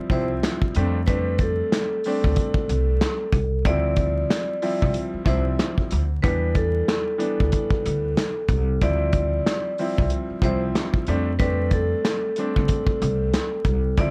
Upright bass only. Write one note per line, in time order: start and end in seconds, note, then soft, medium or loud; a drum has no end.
0.10 0.39 C2 medium
0.76 1.61 F2 loud
2.24 2.36 D2 loud
2.55 muted upright bass stroke soft
2.69 2.97 C2 medium
3.33 3.61 C2 medium
3.66 4.22 D2 loud
4.83 4.94 C2 loud
5.14 muted upright bass stroke soft
5.26 5.55 C2 loud
5.92 6.20 D2 loud
6.24 6.80 E2 loud
7.41 7.52 D2 medium
7.71 muted upright bass stroke soft
7.86 8.14 D2 loud
8.49 8.78 C2 loud
8.82 9.38 D2 loud
9.99 10.10 C2 medium
10.30 muted upright bass stroke soft
10.42 10.71 C2 medium
11.08 11.93 F2 loud
12.57 12.68 D2 loud
12.87 muted upright bass stroke medium
13.02 13.30 C2 loud
13.65 13.94 C2 medium
13.98 14.11 D2 loud